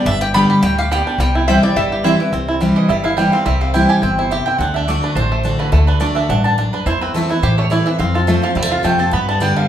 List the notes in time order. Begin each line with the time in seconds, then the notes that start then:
Already playing: G3 G4
0.06 G1 G2 D4 E5
0.21 G4 G5
0.34 D3 G3 B3 D4 G4 D5 G5 B5
0.50 G4
0.63 D2 A2 G3 G5
0.79 G4 F5
0.91 B2 G3 B3 G4 D5 G5
1.07 D4
1.18 C2 C3 G3 G5
1.35 E4
1.47 E3 G3 C4 E4 C5 E5 G5
1.63 C4 E4 D5
1.76 G1 G2 G3 E5
1.92 G4
2.04 E3 G3 C4 E4 C5 E5 G5
2.20 E3 C4 E4
2.33 C2 C3 C4
2.48 E4
2.61 E3 G3 C4 E4
2.76 E3 D#5
2.89 G1 G2 G3 E5
3.04 E4 F5
3.17 E3 G3 C4 E4 G5
3.32 C4 E4 F5
3.45 C2 C3 G3 E5
3.61 C4 F5
3.74 E3 G3 C4 E4 G5
3.89 G4 G#5
4.02 G1 B2 C4 G5
4.18 E4 C5
4.31 C3 G4 E5
4.46 C4 G5
4.58 D2 D3 D4 F#5
4.74 D4 E5
4.88 D3 A3 D4 F#4 D5
5.03 D4 B4
5.15 A1 A2 D4 C5
5.32 A3
5.43 D3 A3 D4 F#4
5.59 D3 B4
5.72 D2 D3 A3 A4
5.87 D4 B4
6.00 D3 A3 D4 F#4 D5
6.15 D4 E5
6.29 A1 G2 D4 F#5
6.44 D4 A5
6.58 F#2 D4
6.73 D4 B4
6.86 E2 E4 C5
7.01 C4 B4
7.14 E3 A3 C4 E4 A4
7.29 C4 E4 B4
7.43 A2 E3 G4 C5
7.58 A3 C#5
7.70 E3 A3 C4 E4 D5
7.86 E3 C4 E4 E5
7.99 F2 C4 F5
8.14 F4 A4
8.27 F3 A3 C4 F4 C5
8.42 F3 C4 F4 F5
8.55 E2 C3 G3 E5
8.62 A3
8.72 F4 F5
8.83 F2 F3 A3 C4 F4 G5
8.98 C4 F4 A5
9.11 G2 B3 B5
9.29 D4 A5
9.40 D3 G3 B3 G4 G5
9.56 D3 F5